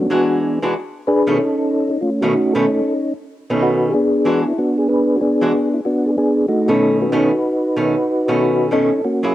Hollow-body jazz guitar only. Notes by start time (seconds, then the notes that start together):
0.10 E3 G#3 D4 F#4
0.62 E3 G#3 D4 F#4
1.27 B2 D#3 A3 C#4
2.22 B2 D#3 A3 C#4
2.55 B2 D#3 A3 C#4
3.50 B2 D#3 A3 C#4
4.25 E3 G#3 D4 F#4
5.41 E3 G#3 D4 F#4
6.68 B2 D#3 A3 C#4
7.12 B2 D#3 A3 C#4
7.76 B2 D#3 A3 C#4
8.28 B2 D#3 A3 C#4
8.71 B2 D#3 A3 C#4
9.23 F#3 A#3 E4 G#4